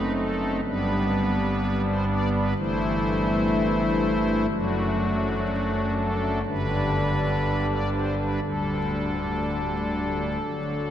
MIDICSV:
0, 0, Header, 1, 2, 480
1, 0, Start_track
1, 0, Key_signature, 1, "major"
1, 0, Tempo, 969305
1, 315, Time_signature, 4, 2, 24, 8
1, 3196, Tempo, 991736
1, 5350, End_track
2, 0, Start_track
2, 0, Title_t, "Pipe organ"
2, 0, Program_c, 0, 19
2, 0, Note_on_c, 0, 30, 53
2, 0, Note_on_c, 0, 42, 58
2, 0, Note_on_c, 0, 57, 45
2, 0, Note_on_c, 0, 60, 45
2, 0, Note_on_c, 0, 63, 45
2, 0, Note_on_c, 0, 71, 95
2, 61, Note_off_c, 0, 71, 0
2, 84, Note_on_c, 0, 69, 87
2, 284, Note_off_c, 0, 69, 0
2, 300, Note_off_c, 0, 30, 0
2, 300, Note_off_c, 0, 42, 0
2, 300, Note_off_c, 0, 60, 0
2, 301, Note_off_c, 0, 57, 0
2, 301, Note_off_c, 0, 63, 0
2, 316, Note_on_c, 0, 31, 52
2, 316, Note_on_c, 0, 62, 44
2, 318, Note_on_c, 0, 55, 48
2, 318, Note_on_c, 0, 59, 44
2, 319, Note_on_c, 0, 71, 99
2, 321, Note_on_c, 0, 43, 52
2, 899, Note_off_c, 0, 71, 0
2, 914, Note_on_c, 0, 72, 91
2, 1016, Note_off_c, 0, 72, 0
2, 1036, Note_on_c, 0, 74, 108
2, 1136, Note_off_c, 0, 74, 0
2, 1156, Note_on_c, 0, 71, 99
2, 1253, Note_off_c, 0, 31, 0
2, 1253, Note_off_c, 0, 62, 0
2, 1254, Note_off_c, 0, 55, 0
2, 1254, Note_off_c, 0, 59, 0
2, 1256, Note_off_c, 0, 43, 0
2, 1256, Note_off_c, 0, 71, 0
2, 1276, Note_on_c, 0, 43, 63
2, 1276, Note_on_c, 0, 52, 51
2, 1276, Note_on_c, 0, 72, 116
2, 1278, Note_on_c, 0, 31, 60
2, 1278, Note_on_c, 0, 64, 54
2, 1281, Note_on_c, 0, 57, 51
2, 2211, Note_off_c, 0, 43, 0
2, 2211, Note_off_c, 0, 52, 0
2, 2211, Note_off_c, 0, 72, 0
2, 2212, Note_off_c, 0, 31, 0
2, 2212, Note_off_c, 0, 64, 0
2, 2213, Note_off_c, 0, 57, 0
2, 2229, Note_on_c, 0, 62, 51
2, 2230, Note_on_c, 0, 42, 53
2, 2231, Note_on_c, 0, 54, 48
2, 2231, Note_on_c, 0, 57, 50
2, 2232, Note_on_c, 0, 30, 60
2, 2233, Note_on_c, 0, 66, 103
2, 2938, Note_off_c, 0, 66, 0
2, 2963, Note_on_c, 0, 69, 91
2, 3166, Note_off_c, 0, 69, 0
2, 3178, Note_off_c, 0, 62, 0
2, 3179, Note_off_c, 0, 42, 0
2, 3179, Note_off_c, 0, 54, 0
2, 3179, Note_off_c, 0, 57, 0
2, 3180, Note_off_c, 0, 30, 0
2, 3205, Note_on_c, 0, 62, 48
2, 3205, Note_on_c, 0, 71, 109
2, 3206, Note_on_c, 0, 43, 60
2, 3206, Note_on_c, 0, 55, 52
2, 3207, Note_on_c, 0, 31, 59
2, 3207, Note_on_c, 0, 50, 48
2, 3780, Note_off_c, 0, 71, 0
2, 3795, Note_on_c, 0, 74, 100
2, 3896, Note_off_c, 0, 74, 0
2, 3916, Note_on_c, 0, 72, 85
2, 4017, Note_off_c, 0, 72, 0
2, 4037, Note_on_c, 0, 71, 83
2, 4138, Note_off_c, 0, 43, 0
2, 4138, Note_off_c, 0, 55, 0
2, 4138, Note_off_c, 0, 62, 0
2, 4138, Note_off_c, 0, 71, 0
2, 4139, Note_off_c, 0, 31, 0
2, 4139, Note_off_c, 0, 50, 0
2, 4157, Note_on_c, 0, 26, 47
2, 4157, Note_on_c, 0, 50, 40
2, 4157, Note_on_c, 0, 55, 39
2, 4157, Note_on_c, 0, 62, 45
2, 4158, Note_on_c, 0, 38, 52
2, 4159, Note_on_c, 0, 69, 78
2, 5098, Note_off_c, 0, 26, 0
2, 5098, Note_off_c, 0, 50, 0
2, 5098, Note_off_c, 0, 62, 0
2, 5099, Note_off_c, 0, 38, 0
2, 5099, Note_off_c, 0, 55, 0
2, 5123, Note_on_c, 0, 54, 42
2, 5124, Note_on_c, 0, 26, 47
2, 5124, Note_on_c, 0, 50, 44
2, 5125, Note_on_c, 0, 62, 43
2, 5126, Note_on_c, 0, 38, 46
2, 5350, Note_off_c, 0, 26, 0
2, 5350, Note_off_c, 0, 38, 0
2, 5350, Note_off_c, 0, 50, 0
2, 5350, Note_off_c, 0, 54, 0
2, 5350, Note_off_c, 0, 62, 0
2, 5350, Note_off_c, 0, 69, 0
2, 5350, End_track
0, 0, End_of_file